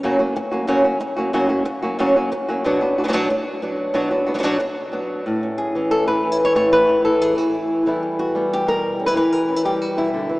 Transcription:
0.03 nylon-string guitar F#2 C#3 F#3 A#3 C#4 F#4
0.19 nylon-string guitar F#3 A#3 C#4 F#4
0.36 muted nylon-string guitar stroke
0.51 nylon-string guitar F#3 A#3 C#4 F#4
0.67 nylon-string guitar F#2 C#3 F#3 A#3 C#4 F#4
0.84 nylon-string guitar F#3 A#3 C#4 F#4
1.00 muted nylon-string guitar stroke
1.16 nylon-string guitar F#3 A#3 C#4 F#4
1.33 nylon-string guitar F#2 C#3 F#3 A#3 C#4 F#4
1.49 nylon-string guitar F#3 A#3 C#4 F#4
1.65 muted nylon-string guitar stroke
1.82 nylon-string guitar F#3 A#3 C#4 F#4
1.99 nylon-string guitar F#2 C#3 F#3 A#3 C#4 F#4
2.16 nylon-string guitar F#3 A#3 C#4 F#4
2.32 muted nylon-string guitar stroke
2.49 nylon-string guitar F#3 A#3 C#4 F#4
2.64 nylon-string guitar B2 F#3 B3 D4 F#4
2.81 nylon-string guitar B3 D4 F#4
2.98 nylon-string guitar B3 D4 F#4
3.04 nylon-string guitar F#3 B3 D4 F#4
3.08 nylon-string guitar F#3 B3 D4 F#4
3.13 nylon-string guitar B2 F#3 B3 D4 F#4
3.30 muted nylon-string guitar stroke
3.62 nylon-string guitar F#3 B3 D4 F#4
3.94 nylon-string guitar B2 F#3 B3 D4 F#4
4.11 nylon-string guitar B3 D4 F#4
4.26 nylon-string guitar B3 D4 F#4
4.34 nylon-string guitar F#3 B3 D4 F#4
4.39 nylon-string guitar F#3 B3 D4 F#4
4.43 nylon-string guitar B2 F#3 B3 D4 F#4
4.59 muted nylon-string guitar stroke
4.92 nylon-string guitar F#3 B3 D4 F#4
5.26 nylon-string guitar A2
5.43 nylon-string guitar C#4
5.58 nylon-string guitar G#4
5.75 nylon-string guitar E3 C#4
5.91 nylon-string guitar A4
6.06 nylon-string guitar E3 B4
6.23 nylon-string guitar C#4
6.32 nylon-string guitar E4
6.41 nylon-string guitar E4
6.45 nylon-string guitar C#5
6.55 nylon-string guitar A2 C#5
6.73 nylon-string guitar B4
6.89 nylon-string guitar E4
7.05 nylon-string guitar E3 A4
7.22 nylon-string guitar G#4
7.37 nylon-string guitar E3 F#4
7.54 nylon-string guitar E4
7.86 nylon-string guitar E3 G3 B3 E4
8.03 nylon-string guitar B3
8.19 nylon-string guitar F#4
8.35 nylon-string guitar G3 B3
8.53 nylon-string guitar G4
8.67 nylon-string guitar B2 A#4
8.99 nylon-string guitar C#4
9.06 nylon-string guitar E4 B4
9.15 nylon-string guitar E3 B4
9.32 nylon-string guitar A#4
9.48 nylon-string guitar C#4
9.56 nylon-string guitar E4
9.65 nylon-string guitar G3 G4
9.82 nylon-string guitar F#4
9.97 nylon-string guitar B2 E4
10.14 nylon-string guitar D3
10.29 nylon-string guitar E3

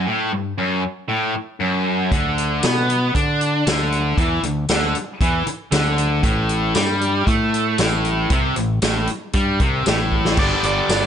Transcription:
0.07 distorted electric guitar A2
0.32 distorted electric guitar G2
0.58 distorted electric guitar F#2
1.08 distorted electric guitar A2
1.34 muted overdriven electric guitar stroke, muted distorted electric guitar stroke
1.61 distorted electric guitar F#2
2.12 fingered electric bass D2, distorted electric guitar D3, kick, closed hi-hat
2.38 closed hi-hat
2.63 fingered electric bass B2, distorted electric guitar B3, snare, closed hi-hat, tambourine
2.90 closed hi-hat
3.15 fingered electric bass D3, distorted electric guitar D4, kick, closed hi-hat
3.41 closed hi-hat
3.67 fingered electric bass D2, distorted electric guitar D3, snare, closed hi-hat, tambourine
3.92 closed hi-hat
4.17 fingered electric bass E2, distorted electric guitar E3, kick, closed hi-hat
4.43 fingered electric bass D2, distorted electric guitar D3, closed hi-hat
4.69 fingered electric bass D2, distorted electric guitar D3, snare, closed hi-hat, tambourine
4.95 closed hi-hat
5.21 fingered electric bass E2, distorted electric guitar E3, kick, closed hi-hat
5.47 muted fingered electric bass stroke, muted distorted electric guitar stroke, muted overdriven electric guitar stroke, closed hi-hat
5.71 fingered electric bass D2, distorted electric guitar D3, snare, closed hi-hat, tambourine
5.98 closed hi-hat
6.23 fingered electric bass A1, distorted electric guitar A2, kick, closed hi-hat
6.49 closed hi-hat
6.75 fingered electric bass G2, distorted electric guitar G3, snare, closed hi-hat, tambourine
7.01 closed hi-hat
7.27 fingered electric bass A2, distorted electric guitar A3, kick, closed hi-hat
7.54 closed hi-hat
7.78 fingered electric bass A1, distorted electric guitar A2, snare, closed hi-hat, tambourine
8.05 closed hi-hat
8.30 fingered electric bass C2, distorted electric guitar C3, kick, closed hi-hat
8.56 fingered electric bass A1, distorted electric guitar A2, closed hi-hat
8.82 fingered electric bass A1, distorted electric guitar A2, snare, closed hi-hat, tambourine
9.07 closed hi-hat
9.33 fingered electric bass G2, distorted electric guitar G3, kick, closed hi-hat
9.60 fingered electric bass C2, distorted electric guitar C3, kick, closed hi-hat
9.86 fingered electric bass A1, distorted electric guitar A2, snare, closed hi-hat, tambourine
10.12 kick
10.25 snare
10.37 fingered electric bass G1, distorted electric guitar G2 D3 G3 B3 D4, lead electric guitar D5, kick, crash
10.63 fingered electric bass G1, lead electric guitar D5, closed hi-hat
10.89 fingered electric bass G1, distorted electric guitar D3 G3 B3 D4, snare, closed hi-hat, tambourine

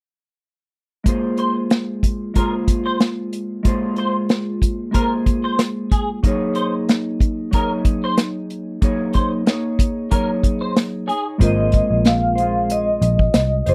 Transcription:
1.04 clean electric guitar G#3 A#3 F4, kick, closed hi-hat
1.08 clean electric guitar G#4 C5
1.37 clean electric guitar C5, closed hi-hat
1.70 snare, closed hi-hat
2.03 kick, closed hi-hat
2.34 clean electric guitar G#3 A#3 F4 G#4 A#4, kick, closed hi-hat
2.38 clean electric guitar C5
2.68 kick, closed hi-hat
2.86 clean electric guitar C5
3.00 snare, closed hi-hat
3.33 closed hi-hat
3.63 clean electric guitar G#3 A#3 F4 G#4, kick, closed hi-hat
3.68 clean electric guitar C5
3.96 clean electric guitar C5, closed hi-hat
4.29 snare, closed hi-hat
4.62 kick, closed hi-hat
4.91 clean electric guitar G#3 A#3 F4 G#4 A#4, kick, closed hi-hat
4.96 clean electric guitar C5
5.26 kick, closed hi-hat
5.44 clean electric guitar C5
5.59 snare, closed hi-hat
5.92 clean electric guitar G#4, kick, closed hi-hat
6.23 clean electric guitar F#3 A#3 D#4 G#4, kick, closed hi-hat
6.27 clean electric guitar C#5
6.55 clean electric guitar C5, closed hi-hat
6.89 snare, closed hi-hat
7.20 kick, closed hi-hat
7.51 clean electric guitar F#3 A#3 D#4 A#4, kick, closed hi-hat
7.56 clean electric guitar G#4 C#5
7.85 kick, closed hi-hat
8.04 clean electric guitar C5
8.17 snare, closed hi-hat
8.50 closed hi-hat
8.82 clean electric guitar F#3 A#3 D#4 G#4 C#5, kick, closed hi-hat
9.13 clean electric guitar C5, kick, closed hi-hat
9.46 clean electric guitar A#3 D#4 G#4 C#5, snare, closed hi-hat
9.79 kick, closed hi-hat
10.11 clean electric guitar F#3 A#3 D#4 G#4 A#4 C#5, kick, closed hi-hat
10.43 kick, closed hi-hat
10.61 clean electric guitar C5
10.76 snare, closed hi-hat
11.07 clean electric guitar D#4 G#4 C#5, closed hi-hat
11.38 picked electric bass G#1, reed electric piano G#3 C4 F4, clean electric guitar G#3 A#3 F4 G#4 C5, kick, closed hi-hat
11.43 reed electric piano A#4, vibraphone D#5
11.72 kick, closed hi-hat
11.90 picked electric bass A#1
12.05 vibraphone F5, snare, closed hi-hat
12.35 clean electric guitar C5, closed hi-hat
12.40 clean electric guitar F4 G#4
12.70 vibraphone D#5, closed hi-hat
13.02 picked electric bass A#1, closed hi-hat
13.19 kick
13.34 picked electric bass C2, snare, closed hi-hat
13.66 picked electric bass F#1, clean electric guitar F4 G#4 C5, vibraphone C5, closed hi-hat

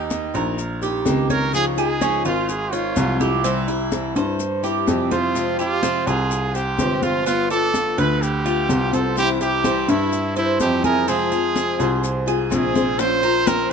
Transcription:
Already playing: grand piano D#2, cuban tres D#4
0.10 steel-string acoustic guitar D#3 A#3 D#4 G4, high conga, maracas
0.34 grand piano A#1, steel-string acoustic guitar A#3 D#4 G4, cuban tres A#4, high conga, maracas
0.58 muted steel-string acoustic guitar stroke, high conga, maracas
0.81 steel-string acoustic guitar A#3 D#4 G4, cuban tres G4, high conga, maracas
1.05 grand piano C#2, steel-string acoustic guitar D#3 A#3 D#4 G4, high conga, maracas
1.30 trumpet A#4, cuban tres C#5, high conga, maracas
1.52 steel-string acoustic guitar C#3 F3 G#3 D#4 F4, trumpet G#4, high conga, maracas
1.76 steel-string acoustic guitar G#3 D#4 F4, cuban tres G#4, trumpet G#4, high conga, maracas
2.00 steel-string acoustic guitar C#3 F3 G#3 D#4 F4, cuban tres C#4, high conga, maracas
2.24 grand piano G#1, steel-string acoustic guitar G#3 D#4 F4, cuban tres F4, trumpet F4, high conga, maracas
2.48 trumpet G#4, muted steel-string acoustic guitar stroke, high conga, maracas
2.71 steel-string acoustic guitar G#3 D#4 F4, trumpet F4, cuban tres C#5, high conga, maracas
2.96 grand piano C2, steel-string acoustic guitar F3 G#3 D#4 F4, high conga, maracas
3.20 trumpet E4, cuban tres G4, high conga, maracas
3.43 steel-string acoustic guitar C3 E3 G3 C4 E4, cuban tres C4, high conga, maracas
3.67 steel-string acoustic guitar G3 C4 E4, cuban tres E4, high conga, maracas
3.91 steel-string acoustic guitar C3 E3 G3 C4 E4, high conga, maracas
4.15 grand piano G2, steel-string acoustic guitar G3 C4 E4, cuban tres C5, high conga, maracas
4.39 muted steel-string acoustic guitar stroke, high conga, maracas
4.63 steel-string acoustic guitar G3 C4 E4, cuban tres G4, high conga, maracas
4.86 grand piano F2, steel-string acoustic guitar C3 E3 G3 C4 E4, high conga, maracas
5.11 trumpet F4, cuban tres C5, high conga, maracas
5.34 steel-string acoustic guitar C3 F3 G#3 C4 G4, high conga, maracas
5.58 steel-string acoustic guitar G#3 C4 G4, trumpet F4, cuban tres G4, high conga, maracas
5.82 steel-string acoustic guitar C3 F3 G#3 C4 G4, cuban tres C4, high conga, maracas
6.06 grand piano C2, steel-string acoustic guitar G#3 C4 G4, cuban tres F4, trumpet G#4, high conga, maracas
6.30 muted steel-string acoustic guitar stroke, high conga, maracas
6.54 steel-string acoustic guitar G#3 C4 G4, trumpet G4, cuban tres C5, high conga, maracas
6.77 grand piano G1, steel-string acoustic guitar C3 F3 G#3 C4 G4, high conga, maracas
7.02 cuban tres F4, trumpet F4, high conga, maracas
7.25 steel-string acoustic guitar G3 B3 F4, cuban tres B3, trumpet F4, high conga, maracas
7.50 cuban tres D4, steel-string acoustic guitar F4, trumpet A4, high conga, maracas
7.73 steel-string acoustic guitar G3 B3 F4, high conga, maracas
7.97 grand piano D2, steel-string acoustic guitar F4, cuban tres B4, trumpet B4, high conga, maracas
8.21 trumpet G4, muted steel-string acoustic guitar stroke, high conga, maracas
8.44 steel-string acoustic guitar B3 F4, cuban tres F4, high conga, maracas
8.68 grand piano C2, steel-string acoustic guitar G3 B3 F4, high conga, maracas
8.93 trumpet A4, cuban tres C5, high conga, maracas
9.16 steel-string acoustic guitar C3 E3 G3 C4 E4, trumpet G4, high conga, maracas
9.40 steel-string acoustic guitar G3 C4 E4, cuban tres G4, trumpet G4, high conga, maracas
9.63 steel-string acoustic guitar C3 E3 G3 C4 E4, cuban tres C4, high conga, maracas
9.88 grand piano G2, steel-string acoustic guitar G3 C4 E4, cuban tres E4, trumpet E4, high conga, maracas
10.11 muted steel-string acoustic guitar stroke, high conga, maracas
10.35 steel-string acoustic guitar G3 C4 E4, trumpet E4, cuban tres C5, high conga, maracas
10.59 grand piano F2, steel-string acoustic guitar C3 E3 G3 C4 E4, trumpet G4, high conga, maracas
10.84 cuban tres G#4, trumpet A#4, high conga, maracas
11.08 steel-string acoustic guitar C3 F3 G#3 C4 F4, cuban tres C4, trumpet G#4, high conga, maracas
11.31 steel-string acoustic guitar G#3 C4 F4, cuban tres F4, high conga, maracas
11.55 steel-string acoustic guitar C3 F3 G#3 C4 F4, high conga, maracas
11.79 grand piano C2, steel-string acoustic guitar G#3 C4 F4, cuban tres C5, high conga, maracas
12.03 muted steel-string acoustic guitar stroke, high conga, maracas
12.26 steel-string acoustic guitar G#3 C4 F4, cuban tres G#4, high conga, maracas
12.50 grand piano A#1, steel-string acoustic guitar C3 F3 G#3 C4 F4, trumpet G#4, high conga, maracas
12.75 cuban tres C5, high conga, maracas
12.99 steel-string acoustic guitar F3 A#3 C#4 F4 C5, trumpet C5, high bongo, high conga, maracas
13.22 steel-string acoustic guitar C#4 F4 C5, cuban tres A#4, high bongo, high conga, maracas
13.46 steel-string acoustic guitar F3 A#3 C#4 F4 C5, cuban tres C4, trumpet A#4, high bongo, high conga, maracas

